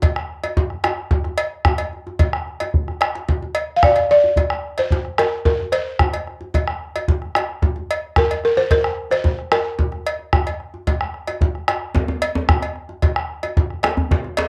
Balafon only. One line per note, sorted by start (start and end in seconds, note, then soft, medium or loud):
3.76 3.83 F5 medium
3.84 4.10 D5 medium
4.11 4.74 D5 medium
4.79 5.16 C5 medium
5.19 5.44 A#4 medium
5.45 5.73 A#4 medium
5.72 7.31 C5 medium
8.18 8.44 A#4 medium
8.45 8.58 A#4 medium
8.57 8.71 C5 medium
8.72 9.13 A#4 medium
9.11 9.53 C5 medium
9.52 11.37 A#4 medium